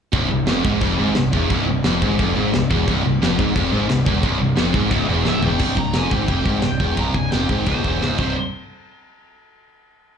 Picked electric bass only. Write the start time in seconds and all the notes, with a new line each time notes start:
0.14 C1
0.32 C1
0.49 F1
0.65 G#1
0.82 F1
1.00 G#1
1.17 C1
1.33 E1
1.51 C1
1.68 C1
1.84 F1
2.03 G#1
2.19 F1
2.37 G#1
2.54 C1
2.71 E1
2.88 C1
3.05 C1
3.22 F1
3.39 G#1
3.56 F1
3.73 G#1
3.91 C1
4.07 E1
4.24 C1
4.41 C1
4.58 F1
4.74 G#1
4.91 C#1
5.09 E1
5.26 C#1
5.42 E1
5.60 C1
5.77 C1
5.95 F1
6.12 G#1
6.29 F1
6.46 G#1
6.64 C1
6.80 E1
6.97 C1
7.15 C1
7.33 F1
7.49 G#1
7.67 C#1
7.84 E1
8.02 C#1
8.19 C1